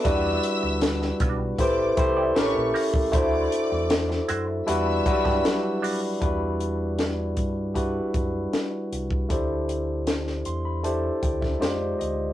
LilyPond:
<<
  \new Staff \with { instrumentName = "String section" } { \time 4/4 \key e \minor \tempo 4 = 78 <e'' e'''>4. r8 <d'' d'''>8 r8 <cis'' cis'''>8 r8 | <d'' d'''>4. r8 <e'' e'''>4. r8 | r1 | r1 | }
  \new Staff \with { instrumentName = "Vibraphone" } { \time 4/4 \key e \minor <fis'' a''>8. r4 r16 b'4. r8 | r1 | r1 | r1 | }
  \new Staff \with { instrumentName = "Clean electric guitar" } { \time 4/4 \key e \minor <g d' fis'>8 r4 <g d' fis'>16 r4 <e' g' d''>16 r8 <g' bes' cis''>16 r16 | <e' fis' c''>8 r4 <e' fis' c''>16 r4 <g d' g'>16 r8 <g d' fis'>16 r16 | r1 | r1 | }
  \new Staff \with { instrumentName = "Tine electric piano" } { \time 4/4 \key e \minor << { r1 | r1 | r1 | r4. c'''16 b''16 a''8 g''16 e''16 d''8 ees''8 | } \\ { <g d' e' fis' b'>4. r8 <a c' e' g' c''>8 <a c' e' g' c''>8 <a cis' e' g' bes'>4 | <a d' e' fis' c''>4. r8 <g d' e' fis' b'>8 <fis g d' e' fis' b'>4 r8 | <g d' e' fis' b'>4. r8 <d' e' fis' g' b'>4. r8 | <a d' e' g' c''>4. r8 <a d' e' g' c''>4 <aes ees' f' g' c''>4 | } >> }
  \new Staff \with { instrumentName = "Fingered electric bass" } { \clef bass \time 4/4 \key e \minor e,8 r16 d,8. b,,8 a,,8 c,8 a,,16 bes,,16 r16 cis,16 | d,8 r16 e,8. fis,8 e,8 r16 g,16 r4 | e,4. g,4 fis,8 r8 c,8 | d,4. e,4 d,8 f,8 d,8 | }
  \new DrumStaff \with { instrumentName = "Drums" } \drummode { \time 4/4 <hh bd>8 hh8 <hh sn>16 sn16 <hh bd>8 <hh bd>8 <hh bd>8 <hh sn>8 hho16 bd16 | <hh bd>8 hh8 <hh sn>16 sn16 hh8 hh8 <hh bd>16 <bd sn>16 <hh sn>8 hho8 | <hh bd>8 hh8 <hh sn>8 <hh bd>8 <hh bd>8 <hh bd>8 <hh sn>8 hh16 bd16 | <hh bd>8 hh8 <hh sn>16 sn16 hh8 hh8 <hh bd>16 <bd sn>16 <hh sn>8 hh8 | }
>>